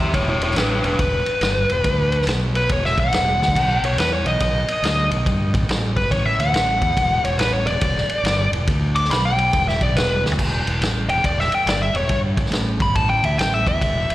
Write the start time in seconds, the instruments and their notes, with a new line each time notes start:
0.00 fingered electric bass E2, lead electric guitar G4 E5
0.14 fingered electric bass E1, lead electric guitar E4 C#5, kick, ride
0.29 lead electric guitar E4 C#5
0.39 fingered electric bass E1, lead electric guitar E4, ride
0.44 lead electric guitar C#5
0.51 fingered electric bass A1, snare
0.56 lead electric guitar D4 B4, snare, ride
0.71 lead electric guitar D4 B4
0.83 fingered electric bass E1, lead electric guitar D4 B4, ride
0.99 fingered electric bass E1, lead electric guitar B4, kick, ride
1.26 muted fingered electric bass stroke, ride
1.41 fingered electric bass G1, snare, ride
1.69 fingered electric bass E1, ride
1.84 fingered electric bass D2, kick, ride
2.12 ride
2.22 snare
2.27 fingered electric bass B1, snare, ride
2.55 lead electric guitar B4, ride
2.69 fingered electric bass E1, lead electric guitar C#5, kick, ride
2.85 lead electric guitar E5, snare
2.97 fingered electric bass B1, lead electric guitar F#5, kick, ride
3.12 fingered electric bass E1, snare, ride
3.40 fingered electric bass D2, snare
3.48 kick
3.55 fingered electric bass B1, kick, crash, ride
3.82 fingered electric bass B1, lead electric guitar C#5, ride
3.97 fingered electric bass E2, lead electric guitar B4, snare, ride
4.13 lead electric guitar C#5
4.25 fingered electric bass B1, lead electric guitar D#5, ride
4.40 fingered electric bass B1, kick, ride
4.68 muted fingered electric bass stroke, ride
4.83 fingered electric bass D2, snare, ride
5.11 fingered electric bass B1, ride
5.26 fingered electric bass G2, kick, ride
5.54 fingered electric bass A1, kick, ride
5.68 fingered electric bass A1, snare, ride
5.96 fingered electric bass G1, lead electric guitar B4, kick, ride
6.11 fingered electric bass A1, lead electric guitar C#5, kick, ride
6.25 lead electric guitar E5
6.39 fingered electric bass D2, lead electric guitar F#5, ride
6.53 fingered electric bass A1, snare, ride
6.81 fingered electric bass E2, kick, ride
6.97 fingered electric bass E1, kick, ride
7.24 fingered electric bass E1, lead electric guitar C#5, ride
7.38 fingered electric bass A1, lead electric guitar B4, snare, ride
7.53 lead electric guitar C#5
7.66 fingered electric bass E1, lead electric guitar D5, ride
7.81 fingered electric bass E1, kick, ride
7.97 snare
8.09 muted fingered electric bass stroke, ride
8.23 fingered electric bass G1, snare, ride
8.51 fingered electric bass E1, ride
8.67 fingered electric bass D2, kick, ride
8.96 lead electric guitar D6, ride
9.05 snare
9.10 fingered electric bass B1, lead electric guitar B5, snare, ride
9.25 lead electric guitar G5
9.38 ride
9.53 fingered electric bass E1, kick, ride
9.68 lead electric guitar E5, snare
9.81 fingered electric bass B1, lead electric guitar D5, kick, ride
9.96 fingered electric bass E1, lead electric guitar B4, snare, ride
10.24 fingered electric bass D2, snare
10.32 floor tom
10.38 fingered electric bass E1, kick, crash
10.66 fingered electric bass E1, ride
10.81 fingered electric bass A1, snare, ride
11.08 fingered electric bass E1, lead electric guitar G5, ride
11.24 fingered electric bass E1, lead electric guitar D5, kick, ride
11.40 lead electric guitar E5, snare
11.52 lead electric guitar G5, muted fingered electric bass stroke, ride
11.66 fingered electric bass G1, lead electric guitar D5, snare, ride
11.82 lead electric guitar E5
11.94 fingered electric bass E1, lead electric guitar C#5, ride
12.09 fingered electric bass G2, kick, ride
12.37 fingered electric bass A1, kick, ride
12.46 snare
12.52 fingered electric bass A1, snare, ride
12.80 fingered electric bass G1, lead electric guitar B5, kick, ride
12.95 fingered electric bass A1, lead electric guitar A5, kick, ride
13.09 lead electric guitar G5
13.22 fingered electric bass D2, lead electric guitar E5, ride
13.38 fingered electric bass A1, lead electric guitar G5, snare, ride
13.54 lead electric guitar E5
13.66 fingered electric bass E2, lead electric guitar E5, kick, ride
13.81 fingered electric bass E1, kick, ride
14.09 fingered electric bass E1, ride